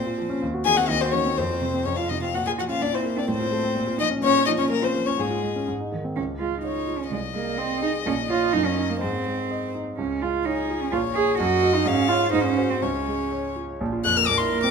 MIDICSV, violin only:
0, 0, Header, 1, 2, 480
1, 0, Start_track
1, 0, Key_signature, -5, "minor"
1, 0, Tempo, 475436
1, 417, Time_signature, 2, 2, 24, 8
1, 4264, Key_signature, -5, "major"
1, 4744, Tempo, 490196
1, 6184, Tempo, 474308
1, 12424, Tempo, 483092
1, 14779, End_track
2, 0, Start_track
2, 0, Title_t, "Violin"
2, 0, Program_c, 0, 40
2, 0, Note_on_c, 0, 72, 60
2, 415, Note_off_c, 0, 72, 0
2, 654, Note_on_c, 0, 80, 89
2, 774, Note_on_c, 0, 78, 67
2, 790, Note_off_c, 0, 80, 0
2, 895, Note_on_c, 0, 75, 85
2, 910, Note_off_c, 0, 78, 0
2, 1015, Note_on_c, 0, 72, 69
2, 1030, Note_off_c, 0, 75, 0
2, 1123, Note_on_c, 0, 73, 70
2, 1138, Note_off_c, 0, 72, 0
2, 1381, Note_on_c, 0, 72, 62
2, 1396, Note_off_c, 0, 73, 0
2, 1867, Note_on_c, 0, 73, 58
2, 1882, Note_off_c, 0, 72, 0
2, 1982, Note_on_c, 0, 77, 48
2, 1997, Note_off_c, 0, 73, 0
2, 2106, Note_on_c, 0, 75, 56
2, 2121, Note_off_c, 0, 77, 0
2, 2234, Note_off_c, 0, 75, 0
2, 2246, Note_on_c, 0, 77, 55
2, 2367, Note_on_c, 0, 78, 66
2, 2383, Note_off_c, 0, 77, 0
2, 2483, Note_off_c, 0, 78, 0
2, 2490, Note_on_c, 0, 80, 56
2, 2536, Note_off_c, 0, 80, 0
2, 2619, Note_on_c, 0, 78, 59
2, 2663, Note_off_c, 0, 78, 0
2, 2730, Note_on_c, 0, 77, 56
2, 2847, Note_on_c, 0, 74, 68
2, 2862, Note_off_c, 0, 77, 0
2, 2975, Note_on_c, 0, 72, 54
2, 2990, Note_off_c, 0, 74, 0
2, 3213, Note_on_c, 0, 74, 59
2, 3229, Note_off_c, 0, 72, 0
2, 3323, Note_off_c, 0, 74, 0
2, 3339, Note_on_c, 0, 72, 72
2, 4024, Note_off_c, 0, 72, 0
2, 4034, Note_on_c, 0, 75, 88
2, 4115, Note_off_c, 0, 75, 0
2, 4280, Note_on_c, 0, 73, 91
2, 4498, Note_off_c, 0, 73, 0
2, 4504, Note_on_c, 0, 75, 78
2, 4552, Note_off_c, 0, 75, 0
2, 4627, Note_on_c, 0, 73, 57
2, 4742, Note_off_c, 0, 73, 0
2, 4748, Note_on_c, 0, 70, 76
2, 4878, Note_on_c, 0, 72, 66
2, 4892, Note_off_c, 0, 70, 0
2, 5097, Note_on_c, 0, 73, 59
2, 5112, Note_off_c, 0, 72, 0
2, 5231, Note_on_c, 0, 68, 57
2, 5246, Note_off_c, 0, 73, 0
2, 5710, Note_off_c, 0, 68, 0
2, 6668, Note_on_c, 0, 73, 40
2, 7110, Note_off_c, 0, 73, 0
2, 7143, Note_on_c, 0, 75, 53
2, 9023, Note_off_c, 0, 75, 0
2, 9062, Note_on_c, 0, 72, 47
2, 9783, Note_off_c, 0, 72, 0
2, 10528, Note_on_c, 0, 68, 50
2, 11004, Note_on_c, 0, 73, 60
2, 11019, Note_off_c, 0, 68, 0
2, 11471, Note_off_c, 0, 73, 0
2, 11477, Note_on_c, 0, 75, 67
2, 11954, Note_on_c, 0, 77, 79
2, 11970, Note_off_c, 0, 75, 0
2, 12405, Note_off_c, 0, 77, 0
2, 12411, Note_on_c, 0, 72, 66
2, 12906, Note_on_c, 0, 73, 52
2, 12921, Note_off_c, 0, 72, 0
2, 13636, Note_off_c, 0, 73, 0
2, 14121, Note_on_c, 0, 90, 85
2, 14235, Note_on_c, 0, 89, 76
2, 14250, Note_off_c, 0, 90, 0
2, 14342, Note_on_c, 0, 86, 85
2, 14357, Note_off_c, 0, 89, 0
2, 14455, Note_on_c, 0, 84, 66
2, 14470, Note_off_c, 0, 86, 0
2, 14696, Note_off_c, 0, 84, 0
2, 14702, Note_on_c, 0, 86, 74
2, 14779, Note_off_c, 0, 86, 0
2, 14779, End_track
0, 0, End_of_file